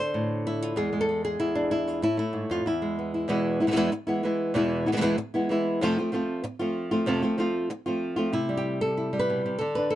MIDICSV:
0, 0, Header, 1, 3, 480
1, 0, Start_track
1, 0, Tempo, 315457
1, 1169, Time_signature, 4, 2, 24, 8
1, 15141, End_track
2, 0, Start_track
2, 0, Title_t, "Nylon-string guitar"
2, 0, Program_c, 0, 24
2, 0, Note_on_c, 0, 50, 60
2, 0, Note_on_c, 0, 62, 53
2, 0, Note_on_c, 0, 69, 41
2, 0, Note_on_c, 0, 72, 87
2, 215, Note_on_c, 0, 45, 54
2, 696, Note_off_c, 0, 72, 0
2, 711, Note_on_c, 0, 64, 83
2, 950, Note_off_c, 0, 62, 0
2, 950, Note_on_c, 0, 65, 82
2, 1150, Note_off_c, 0, 69, 0
2, 1157, Note_on_c, 0, 40, 59
2, 1160, Note_off_c, 0, 50, 0
2, 1166, Note_on_c, 0, 56, 42
2, 1172, Note_off_c, 0, 45, 0
2, 1173, Note_on_c, 0, 68, 87
2, 1179, Note_off_c, 0, 65, 0
2, 1180, Note_off_c, 0, 64, 0
2, 1391, Note_off_c, 0, 56, 0
2, 1409, Note_on_c, 0, 56, 54
2, 1526, Note_off_c, 0, 68, 0
2, 1532, Note_on_c, 0, 69, 77
2, 1638, Note_off_c, 0, 56, 0
2, 1656, Note_on_c, 0, 56, 40
2, 1890, Note_off_c, 0, 69, 0
2, 1896, Note_on_c, 0, 68, 83
2, 2116, Note_off_c, 0, 40, 0
2, 2124, Note_on_c, 0, 64, 76
2, 2134, Note_on_c, 0, 40, 55
2, 2364, Note_on_c, 0, 62, 71
2, 2586, Note_off_c, 0, 64, 0
2, 2604, Note_on_c, 0, 64, 75
2, 2612, Note_off_c, 0, 68, 0
2, 2852, Note_on_c, 0, 65, 75
2, 3063, Note_off_c, 0, 56, 0
2, 3077, Note_off_c, 0, 64, 0
2, 3079, Note_on_c, 0, 45, 66
2, 3086, Note_off_c, 0, 62, 0
2, 3090, Note_off_c, 0, 65, 0
2, 3091, Note_off_c, 0, 40, 0
2, 3095, Note_on_c, 0, 64, 78
2, 3306, Note_on_c, 0, 57, 54
2, 3313, Note_off_c, 0, 64, 0
2, 3332, Note_on_c, 0, 64, 73
2, 3543, Note_on_c, 0, 44, 50
2, 3792, Note_off_c, 0, 44, 0
2, 3798, Note_on_c, 0, 41, 47
2, 3820, Note_on_c, 0, 65, 74
2, 4007, Note_off_c, 0, 57, 0
2, 4041, Note_off_c, 0, 41, 0
2, 4042, Note_off_c, 0, 45, 0
2, 4047, Note_on_c, 0, 40, 58
2, 4048, Note_off_c, 0, 64, 0
2, 4053, Note_off_c, 0, 65, 0
2, 4065, Note_on_c, 0, 64, 62
2, 4289, Note_on_c, 0, 56, 51
2, 4545, Note_on_c, 0, 59, 38
2, 4764, Note_off_c, 0, 64, 0
2, 4782, Note_on_c, 0, 64, 36
2, 4969, Note_off_c, 0, 40, 0
2, 4977, Note_off_c, 0, 56, 0
2, 4987, Note_on_c, 0, 40, 66
2, 4999, Note_on_c, 0, 47, 73
2, 5000, Note_off_c, 0, 59, 0
2, 5002, Note_off_c, 0, 64, 0
2, 5007, Note_on_c, 0, 52, 71
2, 5012, Note_on_c, 0, 56, 76
2, 5018, Note_on_c, 0, 59, 80
2, 5021, Note_on_c, 0, 64, 80
2, 5464, Note_off_c, 0, 40, 0
2, 5465, Note_off_c, 0, 64, 0
2, 5470, Note_off_c, 0, 47, 0
2, 5474, Note_off_c, 0, 52, 0
2, 5477, Note_off_c, 0, 56, 0
2, 5480, Note_off_c, 0, 59, 0
2, 5483, Note_on_c, 0, 64, 55
2, 5496, Note_on_c, 0, 59, 47
2, 5503, Note_on_c, 0, 56, 46
2, 5512, Note_on_c, 0, 52, 44
2, 5570, Note_off_c, 0, 52, 0
2, 5581, Note_off_c, 0, 56, 0
2, 5581, Note_off_c, 0, 59, 0
2, 5583, Note_off_c, 0, 64, 0
2, 5586, Note_on_c, 0, 47, 48
2, 5588, Note_on_c, 0, 52, 56
2, 5599, Note_on_c, 0, 56, 58
2, 5599, Note_on_c, 0, 59, 55
2, 5601, Note_on_c, 0, 64, 53
2, 5631, Note_off_c, 0, 47, 0
2, 5639, Note_off_c, 0, 52, 0
2, 5645, Note_off_c, 0, 56, 0
2, 5649, Note_on_c, 0, 47, 66
2, 5653, Note_off_c, 0, 59, 0
2, 5657, Note_off_c, 0, 64, 0
2, 5658, Note_on_c, 0, 52, 63
2, 5663, Note_on_c, 0, 56, 63
2, 5672, Note_on_c, 0, 59, 71
2, 5675, Note_on_c, 0, 64, 72
2, 5707, Note_off_c, 0, 47, 0
2, 5715, Note_off_c, 0, 52, 0
2, 5718, Note_off_c, 0, 56, 0
2, 5722, Note_off_c, 0, 59, 0
2, 5722, Note_off_c, 0, 64, 0
2, 5725, Note_on_c, 0, 47, 85
2, 5726, Note_on_c, 0, 40, 77
2, 5733, Note_on_c, 0, 52, 80
2, 5737, Note_on_c, 0, 56, 93
2, 5740, Note_on_c, 0, 59, 91
2, 5740, Note_on_c, 0, 64, 86
2, 5944, Note_off_c, 0, 40, 0
2, 5946, Note_off_c, 0, 47, 0
2, 5946, Note_off_c, 0, 52, 0
2, 5953, Note_off_c, 0, 56, 0
2, 5957, Note_off_c, 0, 59, 0
2, 5960, Note_off_c, 0, 64, 0
2, 6190, Note_on_c, 0, 64, 55
2, 6208, Note_on_c, 0, 59, 50
2, 6214, Note_on_c, 0, 56, 42
2, 6221, Note_on_c, 0, 52, 44
2, 6421, Note_off_c, 0, 52, 0
2, 6425, Note_off_c, 0, 64, 0
2, 6427, Note_off_c, 0, 56, 0
2, 6433, Note_off_c, 0, 59, 0
2, 6439, Note_on_c, 0, 52, 49
2, 6445, Note_on_c, 0, 56, 51
2, 6464, Note_on_c, 0, 59, 59
2, 6470, Note_on_c, 0, 64, 59
2, 6903, Note_off_c, 0, 52, 0
2, 6907, Note_on_c, 0, 40, 80
2, 6911, Note_off_c, 0, 56, 0
2, 6916, Note_on_c, 0, 47, 79
2, 6917, Note_off_c, 0, 59, 0
2, 6921, Note_on_c, 0, 52, 77
2, 6924, Note_off_c, 0, 64, 0
2, 6930, Note_on_c, 0, 56, 80
2, 6935, Note_on_c, 0, 59, 84
2, 6943, Note_on_c, 0, 64, 81
2, 7381, Note_off_c, 0, 40, 0
2, 7381, Note_off_c, 0, 64, 0
2, 7386, Note_off_c, 0, 47, 0
2, 7388, Note_off_c, 0, 52, 0
2, 7391, Note_off_c, 0, 59, 0
2, 7393, Note_off_c, 0, 56, 0
2, 7399, Note_on_c, 0, 64, 50
2, 7410, Note_on_c, 0, 59, 51
2, 7411, Note_on_c, 0, 56, 46
2, 7423, Note_on_c, 0, 52, 44
2, 7424, Note_on_c, 0, 47, 56
2, 7429, Note_off_c, 0, 64, 0
2, 7440, Note_off_c, 0, 59, 0
2, 7441, Note_off_c, 0, 56, 0
2, 7453, Note_off_c, 0, 52, 0
2, 7473, Note_off_c, 0, 47, 0
2, 7491, Note_on_c, 0, 47, 62
2, 7496, Note_on_c, 0, 52, 58
2, 7503, Note_on_c, 0, 56, 64
2, 7508, Note_on_c, 0, 59, 66
2, 7511, Note_on_c, 0, 64, 69
2, 7539, Note_off_c, 0, 47, 0
2, 7543, Note_off_c, 0, 52, 0
2, 7550, Note_off_c, 0, 56, 0
2, 7554, Note_off_c, 0, 59, 0
2, 7557, Note_on_c, 0, 47, 74
2, 7559, Note_off_c, 0, 64, 0
2, 7561, Note_on_c, 0, 52, 67
2, 7569, Note_on_c, 0, 56, 77
2, 7572, Note_on_c, 0, 59, 72
2, 7577, Note_on_c, 0, 64, 73
2, 7611, Note_off_c, 0, 47, 0
2, 7619, Note_off_c, 0, 52, 0
2, 7619, Note_off_c, 0, 56, 0
2, 7620, Note_off_c, 0, 59, 0
2, 7627, Note_on_c, 0, 40, 86
2, 7629, Note_on_c, 0, 47, 77
2, 7632, Note_off_c, 0, 64, 0
2, 7637, Note_on_c, 0, 56, 85
2, 7638, Note_on_c, 0, 52, 77
2, 7638, Note_on_c, 0, 59, 88
2, 7650, Note_on_c, 0, 64, 88
2, 7857, Note_off_c, 0, 40, 0
2, 7862, Note_off_c, 0, 47, 0
2, 7866, Note_off_c, 0, 56, 0
2, 7867, Note_off_c, 0, 52, 0
2, 7867, Note_off_c, 0, 59, 0
2, 7867, Note_off_c, 0, 64, 0
2, 8123, Note_on_c, 0, 64, 52
2, 8135, Note_on_c, 0, 59, 49
2, 8150, Note_on_c, 0, 56, 45
2, 8157, Note_on_c, 0, 52, 42
2, 8338, Note_off_c, 0, 52, 0
2, 8349, Note_off_c, 0, 64, 0
2, 8353, Note_off_c, 0, 56, 0
2, 8355, Note_off_c, 0, 59, 0
2, 8356, Note_on_c, 0, 52, 54
2, 8371, Note_on_c, 0, 56, 56
2, 8381, Note_on_c, 0, 59, 61
2, 8390, Note_on_c, 0, 64, 64
2, 8825, Note_off_c, 0, 52, 0
2, 8832, Note_off_c, 0, 56, 0
2, 8837, Note_off_c, 0, 59, 0
2, 8842, Note_off_c, 0, 64, 0
2, 8845, Note_on_c, 0, 41, 71
2, 8853, Note_on_c, 0, 48, 83
2, 8861, Note_on_c, 0, 53, 85
2, 8867, Note_on_c, 0, 57, 75
2, 8872, Note_on_c, 0, 60, 75
2, 8880, Note_on_c, 0, 65, 85
2, 9070, Note_off_c, 0, 41, 0
2, 9073, Note_off_c, 0, 48, 0
2, 9078, Note_off_c, 0, 53, 0
2, 9079, Note_off_c, 0, 65, 0
2, 9081, Note_off_c, 0, 57, 0
2, 9083, Note_off_c, 0, 60, 0
2, 9097, Note_on_c, 0, 65, 49
2, 9107, Note_on_c, 0, 60, 53
2, 9122, Note_on_c, 0, 57, 47
2, 9128, Note_on_c, 0, 53, 39
2, 9294, Note_off_c, 0, 53, 0
2, 9307, Note_off_c, 0, 57, 0
2, 9312, Note_on_c, 0, 53, 54
2, 9316, Note_off_c, 0, 65, 0
2, 9321, Note_off_c, 0, 60, 0
2, 9325, Note_on_c, 0, 57, 59
2, 9337, Note_on_c, 0, 60, 58
2, 9349, Note_on_c, 0, 65, 58
2, 9778, Note_off_c, 0, 53, 0
2, 9789, Note_off_c, 0, 57, 0
2, 9790, Note_off_c, 0, 60, 0
2, 9793, Note_off_c, 0, 65, 0
2, 10033, Note_on_c, 0, 65, 56
2, 10043, Note_on_c, 0, 60, 48
2, 10051, Note_on_c, 0, 57, 49
2, 10064, Note_on_c, 0, 53, 43
2, 10499, Note_off_c, 0, 65, 0
2, 10509, Note_off_c, 0, 60, 0
2, 10513, Note_off_c, 0, 57, 0
2, 10517, Note_on_c, 0, 65, 61
2, 10519, Note_off_c, 0, 53, 0
2, 10527, Note_on_c, 0, 60, 53
2, 10530, Note_on_c, 0, 57, 55
2, 10545, Note_on_c, 0, 53, 43
2, 10741, Note_off_c, 0, 53, 0
2, 10745, Note_on_c, 0, 41, 78
2, 10746, Note_off_c, 0, 65, 0
2, 10751, Note_off_c, 0, 60, 0
2, 10753, Note_off_c, 0, 57, 0
2, 10756, Note_on_c, 0, 48, 74
2, 10759, Note_on_c, 0, 53, 82
2, 10769, Note_on_c, 0, 57, 78
2, 10774, Note_on_c, 0, 60, 78
2, 10777, Note_on_c, 0, 65, 80
2, 10974, Note_off_c, 0, 65, 0
2, 10980, Note_off_c, 0, 41, 0
2, 10986, Note_off_c, 0, 48, 0
2, 10987, Note_off_c, 0, 53, 0
2, 10988, Note_off_c, 0, 60, 0
2, 10992, Note_off_c, 0, 57, 0
2, 10992, Note_on_c, 0, 65, 52
2, 11006, Note_on_c, 0, 60, 51
2, 11013, Note_on_c, 0, 57, 47
2, 11024, Note_on_c, 0, 53, 43
2, 11206, Note_off_c, 0, 53, 0
2, 11217, Note_off_c, 0, 57, 0
2, 11224, Note_off_c, 0, 65, 0
2, 11224, Note_on_c, 0, 53, 57
2, 11231, Note_off_c, 0, 60, 0
2, 11236, Note_on_c, 0, 57, 58
2, 11247, Note_on_c, 0, 60, 55
2, 11255, Note_on_c, 0, 65, 66
2, 11701, Note_off_c, 0, 53, 0
2, 11706, Note_off_c, 0, 57, 0
2, 11712, Note_off_c, 0, 60, 0
2, 11713, Note_off_c, 0, 65, 0
2, 11957, Note_on_c, 0, 65, 54
2, 11967, Note_on_c, 0, 60, 46
2, 11975, Note_on_c, 0, 57, 41
2, 11987, Note_on_c, 0, 53, 42
2, 12401, Note_off_c, 0, 65, 0
2, 12418, Note_off_c, 0, 60, 0
2, 12419, Note_on_c, 0, 65, 59
2, 12425, Note_off_c, 0, 57, 0
2, 12437, Note_on_c, 0, 60, 50
2, 12439, Note_off_c, 0, 53, 0
2, 12444, Note_on_c, 0, 57, 53
2, 12457, Note_on_c, 0, 53, 43
2, 12659, Note_off_c, 0, 65, 0
2, 12668, Note_off_c, 0, 60, 0
2, 12669, Note_on_c, 0, 48, 62
2, 12671, Note_off_c, 0, 57, 0
2, 12678, Note_off_c, 0, 53, 0
2, 12681, Note_on_c, 0, 64, 75
2, 12917, Note_on_c, 0, 55, 53
2, 13046, Note_on_c, 0, 67, 72
2, 13399, Note_off_c, 0, 64, 0
2, 13409, Note_on_c, 0, 69, 77
2, 13644, Note_off_c, 0, 67, 0
2, 13655, Note_on_c, 0, 64, 42
2, 13871, Note_off_c, 0, 55, 0
2, 13889, Note_on_c, 0, 55, 54
2, 13984, Note_off_c, 0, 69, 0
2, 13990, Note_on_c, 0, 71, 85
2, 14144, Note_on_c, 0, 47, 55
2, 14371, Note_off_c, 0, 48, 0
2, 14374, Note_off_c, 0, 47, 0
2, 14389, Note_on_c, 0, 48, 54
2, 14579, Note_off_c, 0, 55, 0
2, 14579, Note_off_c, 0, 64, 0
2, 14585, Note_on_c, 0, 69, 84
2, 14598, Note_off_c, 0, 71, 0
2, 14617, Note_off_c, 0, 48, 0
2, 14623, Note_on_c, 0, 50, 70
2, 14838, Note_on_c, 0, 71, 72
2, 14877, Note_on_c, 0, 62, 59
2, 15052, Note_off_c, 0, 69, 0
2, 15071, Note_on_c, 0, 69, 79
2, 15141, Note_off_c, 0, 50, 0
2, 15141, Note_off_c, 0, 62, 0
2, 15141, Note_off_c, 0, 69, 0
2, 15141, Note_off_c, 0, 71, 0
2, 15141, End_track
3, 0, Start_track
3, 0, Title_t, "Muted nylon-string guitar strokes"
3, 5962, Note_on_c, 9, 29, 59
3, 6115, Note_off_c, 9, 29, 0
3, 7875, Note_on_c, 9, 29, 59
3, 8028, Note_off_c, 9, 29, 0
3, 9792, Note_on_c, 9, 29, 62
3, 9944, Note_off_c, 9, 29, 0
3, 11716, Note_on_c, 9, 29, 65
3, 11868, Note_off_c, 9, 29, 0
3, 15141, End_track
0, 0, End_of_file